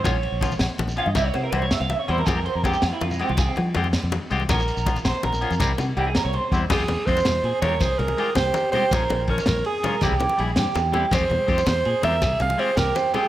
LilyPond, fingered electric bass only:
\new Staff \with { instrumentName = "Fingered electric bass" } { \clef bass \time 12/8 \key f \minor \tempo 4. = 108 bes,,8. bes,,8. bes,,16 r16 bes,,8. g,16 c,8 c8 c,8. c,8 r16 e,8 | f,8. f,8. f,16 r16 f,8. c,8. f8 f,8. f,8 r16 c,8 | bes,,8. bes,,8. bes,,16 r16 bes,,8. f,16 c,8 c8 c,8. c,8 r16 e,8 | f,16 f,16 e,16 r16 f,8 e,8 bes,16 r16 e,8 c,8 c,8 r8 c,8 r4 |
bes,,8 bes,,4 bes,,8 r4 c,16 c,8 r16 bes,,8 g,16 r16 e,4 | f,16 f,16 e,16 r16 f,8 e,8 bes,16 r16 e,8 c,8 c,8 r8 c,8 r4 | }